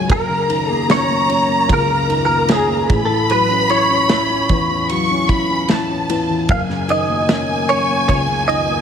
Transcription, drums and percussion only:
0.10 kick, ride
0.50 ride
0.90 snare, ride
1.29 ride
1.69 kick, ride
2.10 ride
2.48 snare, ride
2.90 kick, ride
3.30 ride
3.69 ride
4.09 snare, ride
4.49 kick, ride
4.89 ride
5.29 kick, ride
5.68 snare, ride
6.10 ride
6.49 kick, ride
6.70 snare
6.89 ride
7.29 snare, ride
7.69 ride
8.09 kick, ride
8.49 ride

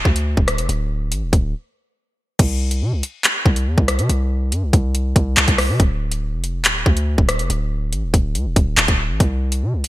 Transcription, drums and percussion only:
0.05 kick
0.16 closed hi-hat
0.37 kick
0.48 cross-stick, closed hi-hat
0.58 closed hi-hat
0.69 closed hi-hat
1.12 closed hi-hat
1.33 kick, closed hi-hat
2.39 kick, closed hi-hat, crash
2.71 closed hi-hat
3.03 closed hi-hat
3.24 clap, closed hi-hat
3.46 kick
3.56 closed hi-hat
3.78 kick
3.88 cross-stick, closed hi-hat
3.99 closed hi-hat
4.09 closed hi-hat
4.52 closed hi-hat
4.73 kick, closed hi-hat
4.95 closed hi-hat
5.16 kick, closed hi-hat
5.37 clap
5.48 kick, closed hi-hat
5.58 cross-stick, open hi-hat
5.80 kick, closed hi-hat
6.12 closed hi-hat
6.44 closed hi-hat
6.65 clap, closed hi-hat
6.86 kick
6.97 closed hi-hat
7.18 kick
7.29 cross-stick, closed hi-hat
7.39 closed hi-hat
7.50 closed hi-hat
7.93 closed hi-hat
8.14 kick, closed hi-hat
8.35 closed hi-hat
8.56 kick, closed hi-hat
8.78 clap
8.88 kick, closed hi-hat
9.20 kick, closed hi-hat
9.52 closed hi-hat
9.84 closed hi-hat

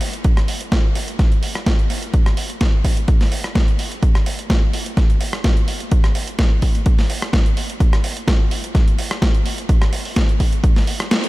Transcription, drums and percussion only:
0.01 open hi-hat
0.13 closed hi-hat
0.24 kick, closed hi-hat
0.37 cross-stick, closed hi-hat
0.48 open hi-hat
0.61 closed hi-hat
0.72 kick, snare, closed hi-hat
0.95 open hi-hat
1.08 closed hi-hat
1.19 kick, snare, closed hi-hat
1.32 closed hi-hat
1.43 open hi-hat
1.55 cross-stick, closed hi-hat
1.66 kick, snare, closed hi-hat
1.79 closed hi-hat
1.90 open hi-hat
2.03 closed hi-hat
2.14 kick, closed hi-hat
2.26 cross-stick, closed hi-hat
2.37 open hi-hat
2.50 closed hi-hat
2.61 kick, snare, closed hi-hat
2.85 kick, open hi-hat
2.97 closed hi-hat
3.08 kick, closed hi-hat
3.21 snare, open hi-hat
3.32 open hi-hat
3.44 cross-stick, closed hi-hat
3.55 kick, snare, closed hi-hat
3.68 closed hi-hat
3.79 open hi-hat
3.92 closed hi-hat
4.03 kick, closed hi-hat
4.15 cross-stick, closed hi-hat
4.26 open hi-hat
4.39 closed hi-hat
4.50 kick, snare, closed hi-hat
4.73 open hi-hat
4.86 closed hi-hat
4.97 kick, snare, closed hi-hat
5.10 closed hi-hat
5.21 open hi-hat
5.33 cross-stick, closed hi-hat
5.44 kick, snare, closed hi-hat
5.57 closed hi-hat
5.68 open hi-hat
5.80 closed hi-hat
5.91 kick, closed hi-hat
6.04 cross-stick, closed hi-hat
6.15 open hi-hat
6.28 closed hi-hat
6.39 kick, snare, closed hi-hat
6.62 kick, open hi-hat
6.75 closed hi-hat
6.86 kick, closed hi-hat
6.99 snare, open hi-hat
7.10 open hi-hat
7.22 cross-stick, closed hi-hat
7.33 kick, snare, closed hi-hat
7.46 closed hi-hat
7.57 open hi-hat
7.70 closed hi-hat
7.80 kick, closed hi-hat
7.93 cross-stick, closed hi-hat
8.04 open hi-hat
8.17 closed hi-hat
8.28 kick, snare, closed hi-hat
8.51 open hi-hat
8.64 closed hi-hat
8.75 kick, snare, closed hi-hat
8.88 closed hi-hat
8.99 open hi-hat
9.11 cross-stick, closed hi-hat
9.22 kick, snare, closed hi-hat
9.34 closed hi-hat
9.46 open hi-hat
9.58 closed hi-hat
9.69 kick, closed hi-hat
9.82 cross-stick, closed hi-hat
9.93 open hi-hat
10.05 open hi-hat
10.16 kick, snare, closed hi-hat
10.29 closed hi-hat
10.40 kick, open hi-hat
10.53 closed hi-hat
10.64 kick, closed hi-hat
10.76 snare, open hi-hat
10.87 open hi-hat
11.00 cross-stick, closed hi-hat
11.11 snare, closed hi-hat
11.24 closed hi-hat

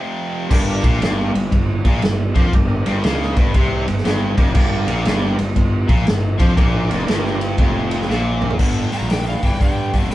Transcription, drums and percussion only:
0.51 kick, crash
0.84 kick, ride
1.02 snare, ride
1.35 ride
1.52 kick, ride
1.85 kick, ride
2.02 snare, ride
2.35 kick, ride
2.53 kick, ride
2.86 ride
3.04 snare, ride
3.22 snare
3.36 kick, ride
3.54 kick, ride
3.88 ride
3.97 snare
4.05 snare, ride
4.38 kick, ride
4.55 kick, crash
4.88 ride
5.05 snare, ride
5.39 ride
5.56 kick, ride
5.89 kick, ride
6.07 snare, ride
6.40 kick, ride
6.57 kick, ride
6.91 ride
7.08 snare, ride
7.26 snare
7.41 ride
7.58 kick, ride
7.91 ride
8.02 snare
8.10 snare
8.42 mid tom
8.50 floor tom
8.59 kick, crash
8.92 open hi-hat
9.10 snare, open hi-hat
9.27 snare
9.43 kick, open hi-hat
9.61 kick, open hi-hat
9.93 kick, open hi-hat
10.11 open hi-hat

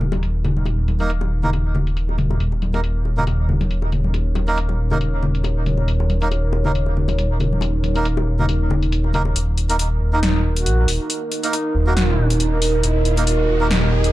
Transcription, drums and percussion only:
0.01 low conga
0.12 closed hi-hat, high bongo, high conga
0.23 closed hi-hat
0.44 closed hi-hat, high bongo, low conga
0.57 high conga
0.66 closed hi-hat, high bongo
0.88 closed hi-hat, high conga
1.00 closed hi-hat, high bongo
1.10 closed hi-hat
1.21 high bongo, high conga
1.43 low conga
1.53 closed hi-hat, high bongo
1.75 high bongo, low conga
1.87 closed hi-hat
1.97 closed hi-hat
2.09 high bongo
2.18 closed hi-hat, high conga, low conga
2.30 high bongo
2.40 closed hi-hat
2.52 high bongo
2.62 closed hi-hat, high conga
2.74 closed hi-hat, high bongo
2.84 closed hi-hat
3.05 high bongo
3.18 low conga
3.27 closed hi-hat, high bongo
3.49 low conga
3.61 closed hi-hat, high bongo, high conga
3.71 closed hi-hat
3.82 high bongo
3.92 closed hi-hat, low conga
4.04 high conga
4.14 closed hi-hat, high bongo
4.35 closed hi-hat, high bongo, high conga
4.48 closed hi-hat
4.58 closed hi-hat
4.69 high bongo, high conga
4.91 high bongo, low conga
5.01 closed hi-hat
5.23 high bongo, low conga
5.35 closed hi-hat
5.44 closed hi-hat, high bongo
5.66 closed hi-hat, high conga, low conga
5.78 high bongo
5.88 closed hi-hat
6.00 high bongo
6.10 closed hi-hat, high conga
6.22 closed hi-hat
6.31 closed hi-hat, high bongo
6.53 high bongo
6.64 low conga
6.75 closed hi-hat
6.86 high bongo
6.97 low conga
7.08 closed hi-hat, high bongo, high conga
7.18 closed hi-hat
7.40 closed hi-hat, high bongo, low conga
7.52 high conga
7.61 closed hi-hat, high bongo
7.84 closed hi-hat, high conga
7.95 closed hi-hat, high bongo
8.05 closed hi-hat
8.17 high bongo, high conga
8.39 low conga
8.49 closed hi-hat, high bongo
8.70 high bongo, low conga
8.83 closed hi-hat
8.92 closed hi-hat
9.04 high bongo
9.13 closed hi-hat, high conga, low conga
9.25 high bongo
9.36 closed hi-hat
9.58 closed hi-hat
9.70 closed hi-hat
9.79 closed hi-hat
10.23 snare, closed hi-hat
10.56 closed hi-hat
10.66 closed hi-hat
10.88 open hi-hat
11.10 closed hi-hat
11.32 closed hi-hat
11.43 closed hi-hat
11.53 closed hi-hat
11.97 snare, closed hi-hat
12.30 closed hi-hat
12.40 closed hi-hat
12.62 open hi-hat
12.83 closed hi-hat
13.05 closed hi-hat
13.17 closed hi-hat
13.27 closed hi-hat
13.71 snare, closed hi-hat
14.04 closed hi-hat

